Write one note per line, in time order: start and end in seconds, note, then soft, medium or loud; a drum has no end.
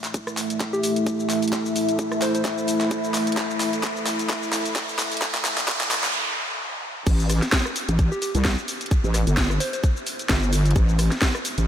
0.00 6.10 A3 medium
0.00 6.10 E4 medium
0.00 6.14 A4 medium
0.00 6.10 E5 medium
0.00 6.14 E5 medium
0.00 riser medium
0.04 clap soft
0.04 closed hi-hat medium
0.04 shaker soft
0.14 kick loud
0.14 closed hi-hat medium
0.14 shaker soft
0.27 cross-stick medium
0.27 shaker soft
0.36 6.14 B5 medium
0.36 clap soft
0.36 open hi-hat loud
0.36 shaker medium
0.50 closed hi-hat medium
0.50 shaker soft
0.60 kick loud
0.60 clap medium
0.60 closed hi-hat medium
0.60 shaker soft
0.73 0.80 G4 medium
0.73 shaker soft
0.83 0.92 G4 medium
0.83 open hi-hat loud
0.83 shaker medium
0.96 closed hi-hat medium
0.96 shaker soft
1.07 kick loud
1.07 closed hi-hat medium
1.07 shaker soft
1.20 shaker soft
1.30 clap medium
1.30 open hi-hat medium
1.30 shaker medium
1.43 closed hi-hat soft
1.43 shaker soft
1.48 closed hi-hat medium
1.53 kick loud
1.53 clap medium
1.53 closed hi-hat medium
1.53 shaker soft
1.66 shaker soft
1.76 open hi-hat loud
1.76 shaker medium
1.89 closed hi-hat medium
1.89 shaker soft
1.99 kick loud
1.99 closed hi-hat medium
1.99 shaker soft
2.12 cross-stick medium
2.12 shaker soft
2.22 2.30 C5 medium
2.22 clap medium
2.22 open hi-hat loud
2.22 shaker medium
2.35 2.41 C5 medium
2.35 closed hi-hat medium
2.35 shaker soft
2.45 kick loud
2.45 clap medium
2.45 closed hi-hat medium
2.45 shaker soft
2.58 shaker soft
2.68 open hi-hat loud
2.68 shaker medium
2.81 clap medium
2.81 closed hi-hat medium
2.81 shaker soft
2.91 kick loud
2.91 closed hi-hat medium
2.91 shaker soft
3.04 shaker soft
3.14 clap medium
3.14 open hi-hat loud
3.14 shaker medium
3.27 closed hi-hat soft
3.27 shaker soft
3.32 closed hi-hat medium
3.37 kick loud
3.37 clap medium
3.37 closed hi-hat medium
3.37 shaker soft
3.50 shaker soft
3.60 clap medium
3.60 open hi-hat loud
3.60 shaker medium
3.73 closed hi-hat medium
3.73 shaker soft
3.83 kick loud
3.83 clap medium
3.83 closed hi-hat medium
3.83 shaker soft
3.97 shaker soft
4.07 clap medium
4.07 open hi-hat loud
4.07 shaker medium
4.19 closed hi-hat medium
4.19 shaker soft
4.30 kick loud
4.30 clap medium
4.30 closed hi-hat medium
4.30 shaker soft
4.43 shaker soft
4.53 clap medium
4.53 open hi-hat loud
4.53 shaker medium
4.66 closed hi-hat soft
4.66 shaker soft
4.76 kick loud
4.76 clap medium
4.76 closed hi-hat medium
4.76 shaker soft
4.89 shaker soft
4.99 clap medium
4.99 open hi-hat loud
4.99 shaker medium
5.12 closed hi-hat soft
5.12 shaker soft
5.17 closed hi-hat medium
5.22 kick loud
5.22 clap medium
5.22 closed hi-hat medium
5.22 noise sweep medium
5.22 shaker soft
5.35 clap medium
5.35 shaker soft
5.45 clap medium
5.45 open hi-hat loud
5.45 shaker medium
5.58 clap medium
5.58 closed hi-hat medium
5.58 shaker soft
5.68 kick loud
5.68 clap loud
5.68 closed hi-hat medium
5.68 shaker soft
5.81 clap medium
5.81 shaker soft
5.91 clap loud
5.91 open hi-hat loud
5.91 shaker medium
6.04 clap medium
6.04 closed hi-hat medium
6.04 shaker soft
7.07 7.40 A1 loud
7.07 11.67 A3 medium
7.07 11.67 E4 medium
7.07 11.67 E5 loud
7.07 kick loud
7.07 closed hi-hat medium
7.07 crash loud
7.07 shaker soft
7.20 shaker soft
7.30 cross-stick medium
7.30 open hi-hat loud
7.30 shaker medium
7.42 snare soft
7.42 closed hi-hat medium
7.42 shaker soft
7.52 kick loud
7.52 snare loud
7.52 closed hi-hat medium
7.52 shaker soft
7.65 cross-stick medium
7.65 shaker soft
7.76 open hi-hat loud
7.76 shaker medium
7.89 8.10 A1 medium
7.89 closed hi-hat medium
7.89 shaker soft
7.99 kick loud
7.99 closed hi-hat medium
7.99 shaker soft
8.12 8.18 G4 medium
8.12 shaker soft
8.22 8.30 G4 medium
8.22 open hi-hat loud
8.22 shaker medium
8.35 8.56 C2 loud
8.35 closed hi-hat medium
8.35 shaker soft
8.45 kick loud
8.45 snare loud
8.45 closed hi-hat medium
8.45 shaker soft
8.58 shaker soft
8.68 open hi-hat loud
8.68 shaker medium
8.81 closed hi-hat medium
8.81 shaker soft
8.86 closed hi-hat medium
8.91 kick loud
8.91 closed hi-hat medium
8.91 shaker soft
9.04 9.25 A1 loud
9.04 shaker soft
9.14 cross-stick medium
9.14 open hi-hat loud
9.14 shaker medium
9.27 9.59 G1 loud
9.27 closed hi-hat medium
9.27 shaker soft
9.37 kick loud
9.37 snare loud
9.37 closed hi-hat medium
9.37 shaker soft
9.50 cross-stick medium
9.50 shaker soft
9.60 9.69 C5 medium
9.60 open hi-hat loud
9.60 shaker medium
9.73 9.80 C5 medium
9.73 closed hi-hat medium
9.73 shaker soft
9.84 kick loud
9.84 closed hi-hat medium
9.84 shaker soft
9.97 shaker soft
10.07 open hi-hat loud
10.07 shaker medium
10.19 closed hi-hat medium
10.19 shaker soft
10.29 10.74 G1 loud
10.29 kick loud
10.29 snare loud
10.29 closed hi-hat medium
10.29 shaker soft
10.43 shaker soft
10.53 open hi-hat loud
10.53 shaker medium
10.66 closed hi-hat soft
10.66 shaker soft
10.71 closed hi-hat medium
10.76 11.10 A1 loud
10.76 kick loud
10.76 closed hi-hat medium
10.76 shaker soft
10.89 shaker soft
10.99 cross-stick medium
10.99 open hi-hat loud
10.99 shaker medium
11.11 snare soft
11.11 closed hi-hat medium
11.11 shaker soft
11.22 kick loud
11.22 snare loud
11.22 closed hi-hat medium
11.22 shaker soft
11.35 cross-stick medium
11.35 shaker soft
11.45 open hi-hat loud
11.45 shaker medium
11.58 11.67 A1 medium
11.58 closed hi-hat medium
11.58 shaker soft